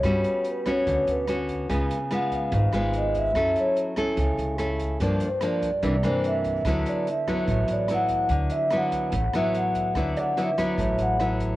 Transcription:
<<
  \new Staff \with { instrumentName = "Vibraphone" } { \time 4/4 \key d \major \tempo 4 = 145 cis''4 b'8 cis''4 b'8 r4 | r4 fis''8 eis''4. ees''8 e''8~ | e''8 cis''8 r2. | r8 c''8 d''4. c''8 e''4 |
r8 d''8 e''4. d''8 fis''4 | r8 e''8 fis''4. e''8 fis''4 | r8 fis''8 e''4. fis''8 r4 | }
  \new Staff \with { instrumentName = "Grand piano" } { \time 4/4 \key d \major r1 | r1 | r1 | r1 |
r1 | r8 e''4. r2 | r8 d''4. r2 | }
  \new Staff \with { instrumentName = "Nylon-string guitar" } { \time 4/4 \key d \major << { <b cis' fis'>4. <b cis' fis'>4. <b cis' fis'>4 | <gis b eis'>8 r8 <gis b eis'>4. <gis b eis'>4. | <cis' e' a'>4. <cis' e' a'>4. <cis' e' a'>4 | <f bes d'>8 r8 <f bes d'>8 r8 <e bes d'>8 <e bes d'>4. |
<fis b e'>4 r8 <fis b e'>4. <fis b e'>4~ | <fis b e'>4 <fis b e'>4 r8 <fis b e'>4. | <fis b e'>4 <fis b e'>8 <fis b e'>4. <fis b e'>4 | } \\ { g2 d2 | cis2 gis,2 | fis2 cis2 | g,2 c2 |
d2 a,2 | d2 a,2 | d2 a,2 | } >> }
  \new Staff \with { instrumentName = "Upright bass" } { \clef bass \time 4/4 \key d \major g,8 r4. d,8 d,4. | cis,8 r4. gis,,8 gis,,4. | fis,8 r4. cis,8 cis,4. | g,8 r4. c,8 g,4. |
d,8 r4. a,,8 a,,4. | d,8 r4. a,,8 r4. | d,8 r4. a,,8 a,,4. | }
  \new DrumStaff \with { instrumentName = "Drums" } \drummode { \time 4/4 <hh bd ss>8 hh8 hh8 <hh bd ss>8 <hh bd>8 hh8 <hh ss>8 <hh bd>8 | <hh bd>8 hh8 <hh ss>8 <hh bd>8 <hh bd>8 <hh ss>8 hh8 <hh bd>8 | <hh bd ss>8 hh8 hh8 <hh bd ss>8 <hh bd>8 hh8 <hh ss>8 <hh bd>8 | <hh bd>8 hh8 <hh ss>8 <hh bd>8 <hh bd>8 <hh ss>8 hh8 <hh bd>8 |
<hh bd ss>8 hh8 hh8 <hh bd ss>8 <hh bd>8 hh8 <hh ss>8 <hh bd>8 | <hh bd>8 hh8 <hh ss>8 <hh bd>8 <hh bd>8 <hh ss>8 hh8 <hh bd>8 | <hh bd ss>8 hh8 hh8 <hh bd ss>8 <hh bd>8 hh8 <hh ss>8 <hh bd>8 | }
>>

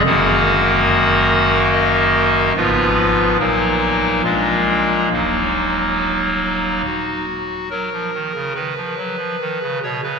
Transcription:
<<
  \new Staff \with { instrumentName = "Pipe organ" } { \time 3/4 \key ees \minor \tempo 4 = 71 ges''2 ees''4 | ces''4 bes'4 f'4 | ees'2 ges'4 | bes'4 ces''4. des''16 ces''16 | }
  \new Staff \with { instrumentName = "Pipe organ" } { \clef bass \time 3/4 \key ees \minor <ges,, ges, ees bes ges'>2. | <aes,, aes, f ces' f'>4 <bes,, bes, ges bes ees'>4 <bes,, bes, aes bes d'>4 | <ees,, ees, ges bes>2 r4 | ges16 f16 ees16 des16 ees16 f16 ges16 f16 ees16 des16 ces16 des16 | }
>>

